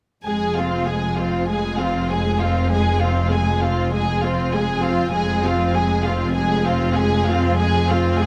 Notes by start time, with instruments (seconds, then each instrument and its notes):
0.25 double bass section F1, cello section F2, viola section G#3, violin section G#4 G#5
0.55 viola section C4, violin section F4 F5
0.86 viola section G#3, violin section G#4 G#5
1.17 viola section C4, violin section F4 F5
1.48 viola section G#3, violin section G#4 G#5
1.78 viola section C4, violin section F4 F5
2.09 viola section G#3, violin section G#4 G#5
2.40 viola section C4, violin section F4 F5
2.71 viola section G#3, violin section G#4 G#5
3.00 viola section C4, violin section F4 F5
3.31 viola section G#3, violin section G#4 G#5
3.62 viola section C4, violin section F4 F5
3.92 viola section G#3, violin section G#4 G#5
4.22 viola section C4, violin section F4 F5
4.52 viola section G#3, violin section G#4 G#5
4.82 viola section C4, violin section F4 F5
5.12 double bass section F1, cello section F2, viola section G#3, violin section G#4 G#5
5.43 viola section C4, violin section F4 F5
5.73 viola section G#3, violin section G#4 G#5
6.03 viola section C4, violin section F4 F5
6.34 viola section G#3, violin section G#4 G#5
6.65 viola section C4, violin section F4 F5
6.96 viola section G#3, violin section G#4 G#5
7.26 viola section C4, violin section F4 F5
7.57 viola section G#3, violin section G#4 G#5
7.88 viola section C4, violin section F4 F5
8.19 viola section G#3, violin section G#4 G#5